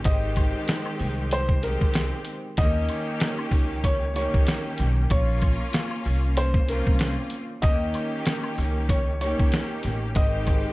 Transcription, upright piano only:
0, 0, Header, 1, 2, 480
1, 0, Start_track
1, 0, Tempo, 631579
1, 40, Time_signature, 4, 2, 24, 8
1, 8153, End_track
2, 0, Start_track
2, 0, Title_t, "Upright piano"
2, 0, Program_c, 0, 0
2, 40, Note_on_c, 0, 75, 86
2, 623, Note_off_c, 0, 75, 0
2, 1008, Note_on_c, 0, 72, 97
2, 1220, Note_off_c, 0, 72, 0
2, 1241, Note_on_c, 0, 70, 84
2, 1592, Note_off_c, 0, 70, 0
2, 1961, Note_on_c, 0, 75, 102
2, 2543, Note_off_c, 0, 75, 0
2, 2923, Note_on_c, 0, 73, 90
2, 3137, Note_off_c, 0, 73, 0
2, 3163, Note_on_c, 0, 73, 85
2, 3512, Note_off_c, 0, 73, 0
2, 3885, Note_on_c, 0, 73, 97
2, 4465, Note_off_c, 0, 73, 0
2, 4844, Note_on_c, 0, 72, 93
2, 5058, Note_off_c, 0, 72, 0
2, 5084, Note_on_c, 0, 70, 83
2, 5433, Note_off_c, 0, 70, 0
2, 5791, Note_on_c, 0, 75, 106
2, 6379, Note_off_c, 0, 75, 0
2, 6763, Note_on_c, 0, 73, 85
2, 6977, Note_off_c, 0, 73, 0
2, 7001, Note_on_c, 0, 73, 85
2, 7351, Note_off_c, 0, 73, 0
2, 7721, Note_on_c, 0, 75, 89
2, 8153, Note_off_c, 0, 75, 0
2, 8153, End_track
0, 0, End_of_file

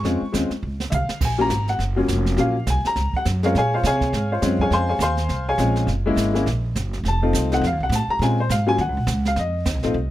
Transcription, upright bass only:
0, 0, Header, 1, 3, 480
1, 0, Start_track
1, 0, Key_signature, -5, "minor"
1, 0, Tempo, 291545
1, 76, Time_signature, 4, 2, 24, 8
1, 16639, End_track
2, 0, Start_track
2, 0, Title_t, "Upright bass"
2, 0, Program_c, 0, 32
2, 58, Note_on_c, 0, 41, 74
2, 332, Note_off_c, 0, 41, 0
2, 554, Note_on_c, 0, 39, 86
2, 813, Note_off_c, 0, 39, 0
2, 1031, Note_on_c, 0, 37, 79
2, 1501, Note_off_c, 0, 37, 0
2, 1510, Note_on_c, 0, 36, 89
2, 1776, Note_off_c, 0, 36, 0
2, 1984, Note_on_c, 0, 34, 75
2, 2458, Note_off_c, 0, 34, 0
2, 2465, Note_on_c, 0, 32, 88
2, 2931, Note_off_c, 0, 32, 0
2, 2941, Note_on_c, 0, 30, 78
2, 3418, Note_off_c, 0, 30, 0
2, 3430, Note_on_c, 0, 29, 91
2, 3886, Note_off_c, 0, 29, 0
2, 3895, Note_on_c, 0, 34, 81
2, 4375, Note_off_c, 0, 34, 0
2, 4389, Note_on_c, 0, 36, 88
2, 4662, Note_off_c, 0, 36, 0
2, 4869, Note_on_c, 0, 37, 90
2, 5143, Note_off_c, 0, 37, 0
2, 5358, Note_on_c, 0, 42, 97
2, 5828, Note_off_c, 0, 42, 0
2, 5842, Note_on_c, 0, 46, 75
2, 6303, Note_off_c, 0, 46, 0
2, 6313, Note_on_c, 0, 48, 98
2, 6785, Note_off_c, 0, 48, 0
2, 6794, Note_on_c, 0, 44, 83
2, 7266, Note_off_c, 0, 44, 0
2, 7277, Note_on_c, 0, 42, 95
2, 7737, Note_off_c, 0, 42, 0
2, 7746, Note_on_c, 0, 41, 82
2, 8204, Note_off_c, 0, 41, 0
2, 8213, Note_on_c, 0, 39, 95
2, 8695, Note_off_c, 0, 39, 0
2, 8711, Note_on_c, 0, 36, 81
2, 9174, Note_off_c, 0, 36, 0
2, 9184, Note_on_c, 0, 34, 93
2, 9649, Note_off_c, 0, 34, 0
2, 9659, Note_on_c, 0, 30, 76
2, 10138, Note_off_c, 0, 30, 0
2, 10146, Note_on_c, 0, 32, 85
2, 10621, Note_off_c, 0, 32, 0
2, 10638, Note_on_c, 0, 34, 82
2, 11107, Note_off_c, 0, 34, 0
2, 11121, Note_on_c, 0, 30, 96
2, 11572, Note_off_c, 0, 30, 0
2, 11582, Note_on_c, 0, 29, 79
2, 12059, Note_off_c, 0, 29, 0
2, 12070, Note_on_c, 0, 36, 97
2, 12526, Note_off_c, 0, 36, 0
2, 12536, Note_on_c, 0, 41, 92
2, 12712, Note_off_c, 0, 41, 0
2, 12712, Note_on_c, 0, 39, 60
2, 12837, Note_off_c, 0, 39, 0
2, 12847, Note_on_c, 0, 36, 72
2, 12987, Note_off_c, 0, 36, 0
2, 12997, Note_on_c, 0, 45, 94
2, 13284, Note_off_c, 0, 45, 0
2, 13486, Note_on_c, 0, 46, 83
2, 13969, Note_off_c, 0, 46, 0
2, 13985, Note_on_c, 0, 44, 91
2, 14449, Note_off_c, 0, 44, 0
2, 14459, Note_on_c, 0, 39, 89
2, 14628, Note_off_c, 0, 39, 0
2, 14628, Note_on_c, 0, 37, 56
2, 14758, Note_off_c, 0, 37, 0
2, 14768, Note_on_c, 0, 34, 67
2, 14920, Note_off_c, 0, 34, 0
2, 14930, Note_on_c, 0, 37, 107
2, 15402, Note_off_c, 0, 37, 0
2, 15412, Note_on_c, 0, 41, 90
2, 15885, Note_off_c, 0, 41, 0
2, 15895, Note_on_c, 0, 39, 92
2, 16043, Note_off_c, 0, 39, 0
2, 16043, Note_on_c, 0, 36, 62
2, 16203, Note_off_c, 0, 36, 0
2, 16213, Note_on_c, 0, 33, 67
2, 16358, Note_off_c, 0, 33, 0
2, 16368, Note_on_c, 0, 36, 86
2, 16639, Note_off_c, 0, 36, 0
2, 16639, End_track
3, 0, Start_track
3, 0, Title_t, "Muted upright bass strokes"
3, 354, Note_on_c, 9, 29, 36
3, 518, Note_off_c, 9, 29, 0
3, 823, Note_on_c, 9, 29, 36
3, 988, Note_off_c, 9, 29, 0
3, 1786, Note_on_c, 9, 29, 38
3, 1950, Note_off_c, 9, 29, 0
3, 4678, Note_on_c, 9, 29, 39
3, 4843, Note_off_c, 9, 29, 0
3, 5155, Note_on_c, 9, 29, 39
3, 5319, Note_off_c, 9, 29, 0
3, 13306, Note_on_c, 9, 29, 41
3, 13470, Note_off_c, 9, 29, 0
3, 16639, End_track
0, 0, End_of_file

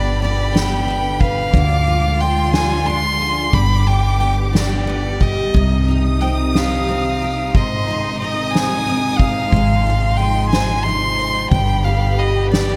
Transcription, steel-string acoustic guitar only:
0, 0, Header, 1, 2, 480
1, 0, Start_track
1, 0, Tempo, 665188
1, 1111, Time_signature, 6, 3, 24, 8
1, 9210, End_track
2, 0, Start_track
2, 0, Title_t, "Steel-string acoustic guitar"
2, 0, Program_c, 0, 25
2, 0, Note_on_c, 0, 43, 74
2, 0, Note_on_c, 0, 62, 57
2, 159, Note_on_c, 0, 59, 58
2, 393, Note_on_c, 0, 71, 68
2, 626, Note_off_c, 0, 59, 0
2, 635, Note_on_c, 0, 59, 62
2, 872, Note_off_c, 0, 71, 0
2, 879, Note_on_c, 0, 71, 63
2, 1113, Note_off_c, 0, 43, 0
2, 1115, Note_on_c, 0, 50, 79
2, 1159, Note_off_c, 0, 59, 0
2, 1161, Note_off_c, 0, 71, 0
2, 1347, Note_off_c, 0, 62, 0
2, 1350, Note_on_c, 0, 65, 60
2, 1590, Note_on_c, 0, 62, 57
2, 1827, Note_on_c, 0, 68, 58
2, 2069, Note_off_c, 0, 62, 0
2, 2072, Note_on_c, 0, 62, 59
2, 2294, Note_off_c, 0, 68, 0
2, 2303, Note_on_c, 0, 68, 62
2, 2548, Note_on_c, 0, 43, 79
2, 2596, Note_off_c, 0, 68, 0
2, 2600, Note_off_c, 0, 65, 0
2, 2601, Note_off_c, 0, 62, 0
2, 2792, Note_on_c, 0, 62, 51
2, 3035, Note_on_c, 0, 59, 50
2, 3270, Note_on_c, 0, 67, 59
2, 3507, Note_off_c, 0, 59, 0
2, 3516, Note_on_c, 0, 59, 59
2, 3641, Note_off_c, 0, 50, 0
2, 3752, Note_off_c, 0, 67, 0
2, 3755, Note_on_c, 0, 67, 60
2, 3997, Note_on_c, 0, 48, 71
2, 3998, Note_off_c, 0, 43, 0
2, 4046, Note_off_c, 0, 67, 0
2, 4047, Note_off_c, 0, 59, 0
2, 4048, Note_off_c, 0, 62, 0
2, 4245, Note_on_c, 0, 63, 58
2, 4487, Note_on_c, 0, 60, 54
2, 4732, Note_on_c, 0, 67, 62
2, 4965, Note_off_c, 0, 60, 0
2, 4968, Note_on_c, 0, 60, 62
2, 5201, Note_off_c, 0, 67, 0
2, 5209, Note_on_c, 0, 67, 63
2, 5440, Note_off_c, 0, 48, 0
2, 5447, Note_on_c, 0, 44, 77
2, 5493, Note_off_c, 0, 67, 0
2, 5684, Note_off_c, 0, 63, 0
2, 5687, Note_on_c, 0, 63, 57
2, 5926, Note_off_c, 0, 60, 0
2, 5929, Note_on_c, 0, 60, 54
2, 6165, Note_on_c, 0, 68, 67
2, 6397, Note_off_c, 0, 60, 0
2, 6400, Note_on_c, 0, 60, 65
2, 6637, Note_off_c, 0, 68, 0
2, 6640, Note_on_c, 0, 68, 66
2, 6873, Note_off_c, 0, 44, 0
2, 6881, Note_on_c, 0, 56, 82
2, 6922, Note_off_c, 0, 60, 0
2, 6922, Note_off_c, 0, 63, 0
2, 6922, Note_off_c, 0, 68, 0
2, 7120, Note_on_c, 0, 65, 59
2, 7354, Note_on_c, 0, 63, 54
2, 7594, Note_on_c, 0, 72, 64
2, 7825, Note_off_c, 0, 63, 0
2, 7834, Note_on_c, 0, 63, 58
2, 8063, Note_off_c, 0, 72, 0
2, 8072, Note_on_c, 0, 72, 66
2, 8309, Note_on_c, 0, 43, 71
2, 8311, Note_off_c, 0, 56, 0
2, 8357, Note_off_c, 0, 72, 0
2, 8358, Note_off_c, 0, 63, 0
2, 8359, Note_off_c, 0, 65, 0
2, 8552, Note_on_c, 0, 67, 60
2, 9030, Note_on_c, 0, 71, 61
2, 9210, Note_off_c, 0, 43, 0
2, 9210, Note_off_c, 0, 67, 0
2, 9210, Note_off_c, 0, 71, 0
2, 9210, End_track
0, 0, End_of_file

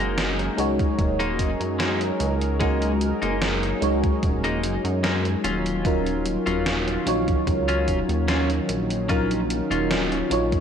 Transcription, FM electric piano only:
0, 0, Header, 1, 2, 480
1, 0, Start_track
1, 0, Key_signature, 6, "major"
1, 0, Tempo, 810811
1, 1544, Time_signature, 4, 2, 24, 8
1, 6276, End_track
2, 0, Start_track
2, 0, Title_t, "FM electric piano"
2, 0, Program_c, 0, 5
2, 0, Control_c, 0, 64, 127
2, 0, Note_on_c, 0, 56, 83
2, 0, Note_on_c, 0, 61, 79
2, 0, Note_on_c, 0, 63, 78
2, 0, Note_on_c, 0, 66, 77
2, 0, Note_on_c, 0, 70, 94
2, 312, Note_off_c, 0, 56, 0
2, 315, Note_off_c, 0, 61, 0
2, 317, Note_off_c, 0, 63, 0
2, 319, Note_off_c, 0, 66, 0
2, 321, Note_off_c, 0, 70, 0
2, 335, Note_on_c, 0, 56, 93
2, 340, Note_on_c, 0, 61, 87
2, 343, Note_on_c, 0, 63, 85
2, 348, Note_on_c, 0, 66, 84
2, 353, Note_on_c, 0, 73, 105
2, 1512, Note_off_c, 0, 56, 0
2, 1515, Note_off_c, 0, 61, 0
2, 1516, Note_off_c, 0, 63, 0
2, 1519, Note_off_c, 0, 66, 0
2, 1521, Note_off_c, 0, 73, 0
2, 1535, Note_on_c, 0, 56, 87
2, 1540, Note_on_c, 0, 61, 78
2, 1544, Note_on_c, 0, 63, 79
2, 1549, Note_on_c, 0, 66, 81
2, 1553, Note_on_c, 0, 70, 97
2, 2232, Note_off_c, 0, 56, 0
2, 2235, Note_off_c, 0, 61, 0
2, 2237, Note_off_c, 0, 63, 0
2, 2239, Note_off_c, 0, 66, 0
2, 2241, Note_off_c, 0, 70, 0
2, 2254, Note_on_c, 0, 56, 93
2, 2258, Note_on_c, 0, 61, 85
2, 2263, Note_on_c, 0, 63, 84
2, 2267, Note_on_c, 0, 66, 88
2, 2271, Note_on_c, 0, 73, 101
2, 3205, Note_off_c, 0, 56, 0
2, 3207, Note_off_c, 0, 61, 0
2, 3210, Note_off_c, 0, 63, 0
2, 3212, Note_off_c, 0, 66, 0
2, 3214, Note_off_c, 0, 73, 0
2, 3231, Control_c, 0, 64, 0
2, 3323, Control_c, 0, 64, 127
2, 3454, Note_on_c, 0, 54, 88
2, 3458, Note_on_c, 0, 61, 80
2, 3463, Note_on_c, 0, 63, 80
2, 3466, Note_on_c, 0, 65, 77
2, 3472, Note_on_c, 0, 70, 95
2, 4152, Note_off_c, 0, 54, 0
2, 4154, Note_off_c, 0, 61, 0
2, 4156, Note_off_c, 0, 63, 0
2, 4158, Note_off_c, 0, 65, 0
2, 4161, Note_off_c, 0, 70, 0
2, 4176, Note_on_c, 0, 54, 93
2, 4180, Note_on_c, 0, 61, 86
2, 4185, Note_on_c, 0, 63, 86
2, 4188, Note_on_c, 0, 65, 85
2, 4193, Note_on_c, 0, 73, 104
2, 5353, Note_off_c, 0, 54, 0
2, 5355, Note_off_c, 0, 61, 0
2, 5357, Note_off_c, 0, 63, 0
2, 5359, Note_off_c, 0, 65, 0
2, 5361, Note_off_c, 0, 73, 0
2, 5375, Note_on_c, 0, 54, 88
2, 5379, Note_on_c, 0, 61, 78
2, 5384, Note_on_c, 0, 63, 80
2, 5388, Note_on_c, 0, 65, 78
2, 5392, Note_on_c, 0, 70, 97
2, 6072, Note_off_c, 0, 54, 0
2, 6074, Note_off_c, 0, 61, 0
2, 6077, Note_off_c, 0, 63, 0
2, 6079, Note_off_c, 0, 65, 0
2, 6081, Note_off_c, 0, 70, 0
2, 6093, Note_on_c, 0, 54, 92
2, 6098, Note_on_c, 0, 61, 85
2, 6103, Note_on_c, 0, 63, 89
2, 6107, Note_on_c, 0, 65, 88
2, 6111, Note_on_c, 0, 73, 104
2, 6276, Note_off_c, 0, 54, 0
2, 6276, Note_off_c, 0, 61, 0
2, 6276, Note_off_c, 0, 63, 0
2, 6276, Note_off_c, 0, 65, 0
2, 6276, Note_off_c, 0, 73, 0
2, 6276, End_track
0, 0, End_of_file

